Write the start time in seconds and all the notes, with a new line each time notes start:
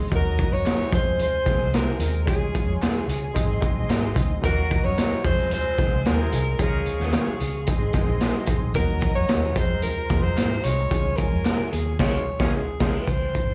Already playing: G#4 D#5
0.11 D#2 F#3 A#3 D#4 F#4 D#5 A#5, kick, closed hi-hat, tambourine
0.15 A#4
0.25 muted conga
0.38 kick, closed hi-hat, tambourine, high conga
0.52 F#2 C#5
0.65 snare, clap, closed hi-hat, tambourine, muted conga, high conga
0.78 muted fingered electric bass stroke, muted conga
0.91 F2 G#3 C4 F4 G#4 C5 G#5, kick, closed hi-hat, tambourine, low conga
1.05 low conga
1.19 C5, closed hi-hat, muted conga
1.45 C#2 G#3 C4 F4 G#4, kick, snare, closed hi-hat, tambourine, high conga
1.59 C2, high conga
1.74 A#4, snare, clap, closed hi-hat, tambourine
1.86 muted conga
1.99 D#2 G#3 C4 F4 A#4, closed hi-hat, high conga, low conga
2.26 C#2 G#3 C#4 F4 G4 G#4 C#5 G#5, kick, closed hi-hat, tambourine
2.33 G#4
2.41 muted conga
2.55 kick, closed hi-hat, tambourine, high conga
2.67 F2
2.81 G#4, snare, clap, closed hi-hat, tambourine, high conga
2.95 muted fingered electric bass stroke, muted conga
3.08 C#2, closed hi-hat, tambourine, low conga
3.22 low conga
3.34 G#1 G#3 C4 D#4 G#4 D#5 C6, kick, closed hi-hat, muted conga
3.50 muted conga
3.60 F#1 G#3 C4 D#4 G#4, kick, closed hi-hat, tambourine, high conga
3.75 A#1, high conga
3.89 G#1, snare, clap, closed hi-hat, tambourine
4.03 muted conga
4.14 D2 G#3 C4 D#4 G#4, kick, closed hi-hat, tambourine, high conga, low conga
4.41 D#2 D#3 F#3 A#3 D#4 F#4 A#4 D#5 A#5, kick, closed hi-hat, tambourine
4.56 muted conga
4.70 kick, closed hi-hat, tambourine, high conga
4.84 F#2 F#3 D#4 A#4 C#5
4.97 snare, clap, closed hi-hat, tambourine, muted conga, high conga
5.12 muted fingered electric bass stroke, muted conga
5.23 F2 G#3 C4 F4 G#4 C5 G#5, kick, tambourine, crash, low conga
5.38 low conga
5.51 C5, closed hi-hat, muted conga
5.66 muted conga
5.78 C#2 G#3 C4 F4 G#4, kick, snare, closed hi-hat, tambourine, high conga
5.92 C2, high conga
6.05 D#2 F3 C4 G#4 A#4, snare, clap, closed hi-hat, tambourine, muted conga
6.32 C2 G#3 C4 F4 G#4, closed hi-hat, tambourine, high conga, low conga
6.59 C#2 F3 G#3 C#4 F4 G#4 A#4 F5 C#6, kick, closed hi-hat, tambourine
6.86 closed hi-hat, tambourine, high conga
7.00 D#2 F3 C#4 G#4, snare
7.12 G#4, snare, clap, closed hi-hat, tambourine, muted conga, high conga
7.27 muted fingered electric bass stroke, muted conga
7.40 C#2, closed hi-hat, tambourine, low conga
7.54 low conga
7.67 G#1 G#3 C4 D#4 G#4 D#5 C6, kick, closed hi-hat, tambourine
7.93 F#1 G#3 C4 D#4 G#4, kick, snare, closed hi-hat, tambourine, high conga
8.08 A#1, high conga
8.20 snare, clap, closed hi-hat, tambourine, muted conga
8.35 muted conga
8.46 G#1 G#3 C4 D#4 G#4, kick, closed hi-hat, tambourine, high conga, low conga
8.62 A#1
8.74 D#2 F#3 A#3 D#4 F#4 A#4 D#5 A#5, kick, closed hi-hat, tambourine, muted conga
9.01 kick, closed hi-hat, tambourine, high conga
9.15 F2 C#5
9.29 D#2, snare, clap, closed hi-hat, tambourine, muted conga, high conga
9.44 muted conga
9.56 F2 G#3 C4 F4 G#4 C5 A#5, kick, closed hi-hat, tambourine, low conga
9.70 low conga
9.82 A#4, closed hi-hat, tambourine, muted conga
10.09 D#2 G#3 C4 F4 G#4, kick, snare, closed hi-hat, tambourine, high conga
10.22 F2 C5, high conga
10.37 G#2, snare, clap, closed hi-hat, tambourine, muted conga
10.63 C2 G#3 C4 F4 G#4 C#5, closed hi-hat, tambourine, high conga, low conga
10.90 C#2 G#3 C#4 D#4 F4 G#4 C#5 G#5, kick, closed hi-hat, tambourine
11.00 F4
11.16 A#4, kick, closed hi-hat, tambourine, high conga
11.32 F2
11.45 snare, clap, closed hi-hat, tambourine, high conga
11.60 muted fingered electric bass stroke
11.72 D#2 G#4, closed hi-hat, tambourine, low conga
11.86 low conga
11.99 C#2 F3 G#3 C#4 F4 G#4 C#5 F5, kick, snare, crash
12.40 C#2 F3 G#3 C#4 F4 G#4 F5, kick, snare
12.57 G#4
12.80 C#2 F3 G#3 C#4 F4 G#4 F5, kick, snare, crash
13.01 B4
13.07 C#2 C5, kick, closed hi-hat
13.34 G#1, kick, closed hi-hat